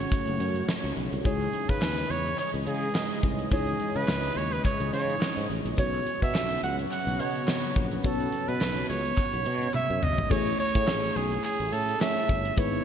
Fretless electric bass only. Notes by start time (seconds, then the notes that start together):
0.28 F#1
0.40 F#2
0.84 C#2
0.97 B1
1.12 C2
1.25 C#2
1.69 C#3
1.82 D#2
2.10 E2
2.54 C#2
2.67 C#3
3.23 C2
3.52 C#2
3.96 C#3
4.08 C#2
4.36 D#2
4.80 C#2
4.93 C#3
5.37 G#2
5.50 A1
5.65 A#1
5.78 B1
6.22 B2
6.35 B1
6.63 C#2
7.07 B1
7.20 B2
7.76 A#1
8.04 B1
8.49 B2
8.61 B1
8.90 C#2
9.34 B1
9.46 B2
9.90 F#2
10.03 G1
10.18 G#1
10.31 A1
10.75 A2
10.88 A1
11.16 B1
11.60 A1
11.72 A2
12.29 G1
12.58 G#1